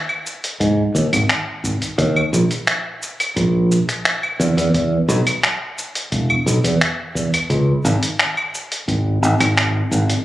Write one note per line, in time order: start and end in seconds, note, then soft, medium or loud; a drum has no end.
0.09 claves medium
0.27 cabasa medium
0.44 closed hi-hat medium
0.44 cabasa soft
0.60 0.82 G#2 medium
0.60 kick loud
0.60 closed hi-hat soft
0.60 cabasa soft
0.95 1.06 D#2 medium
0.95 kick medium
0.95 cabasa medium
1.13 1.23 G#1 medium
1.13 closed hi-hat medium
1.13 cabasa soft
1.13 claves medium
1.29 finger snap medium
1.29 closed hi-hat soft
1.29 cabasa soft
1.64 1.75 G#1 medium
1.64 kick loud
1.64 cabasa medium
1.82 closed hi-hat medium
1.82 cabasa soft
1.98 2.20 D#2 loud
1.98 kick loud
1.98 closed hi-hat soft
1.98 cabasa soft
2.16 claves medium
2.33 2.44 A#1 medium
2.33 cabasa medium
2.51 closed hi-hat medium
2.51 cabasa soft
2.67 finger snap medium
2.67 closed hi-hat soft
2.67 cabasa soft
3.03 cabasa medium
3.20 closed hi-hat medium
3.20 cabasa soft
3.20 claves medium
3.36 3.78 A#1 medium
3.36 kick loud
3.36 closed hi-hat soft
3.36 cabasa soft
3.72 cabasa medium
3.89 finger snap soft
3.89 closed hi-hat medium
3.89 cabasa soft
4.05 finger snap loud
4.05 closed hi-hat soft
4.05 cabasa soft
4.23 claves medium
4.40 4.51 E2 medium
4.40 cabasa medium
4.57 4.68 E2 medium
4.57 closed hi-hat medium
4.57 cabasa soft
4.74 4.96 E2 medium
4.74 kick loud
4.74 closed hi-hat soft
4.74 cabasa soft
5.08 5.20 B1 loud
5.08 cabasa medium
5.27 closed hi-hat medium
5.27 cabasa soft
5.27 claves medium
5.43 finger snap loud
5.43 closed hi-hat soft
5.43 cabasa soft
5.79 cabasa medium
5.95 closed hi-hat medium
5.95 cabasa soft
6.12 6.34 E1 medium
6.12 kick loud
6.12 closed hi-hat soft
6.12 cabasa soft
6.30 claves medium
6.46 6.57 B1 medium
6.46 kick medium
6.46 cabasa medium
6.64 6.74 E2 medium
6.64 closed hi-hat medium
6.64 cabasa soft
6.81 finger snap loud
6.81 closed hi-hat soft
6.81 cabasa soft
7.15 7.26 E2 medium
7.15 kick loud
7.15 cabasa medium
7.34 closed hi-hat medium
7.34 cabasa soft
7.34 claves medium
7.50 7.71 C#2 loud
7.50 kick loud
7.50 closed hi-hat soft
7.50 cabasa soft
7.85 7.96 G#1 loud
7.85 cabasa medium
8.03 closed hi-hat medium
8.03 cabasa soft
8.19 finger snap loud
8.19 closed hi-hat soft
8.19 cabasa soft
8.37 claves medium
8.55 cabasa medium
8.72 closed hi-hat medium
8.72 cabasa soft
8.88 9.22 G#1 medium
8.88 kick loud
8.88 closed hi-hat soft
8.88 cabasa soft
9.22 9.33 G#1 loud
9.22 cabasa medium
9.40 9.81 G#1 medium
9.40 finger snap soft
9.40 closed hi-hat medium
9.40 cabasa soft
9.40 claves medium
9.57 finger snap loud
9.57 closed hi-hat soft
9.57 cabasa soft
9.91 10.13 G#1 loud
9.91 cabasa medium
10.10 closed hi-hat medium
10.10 cabasa soft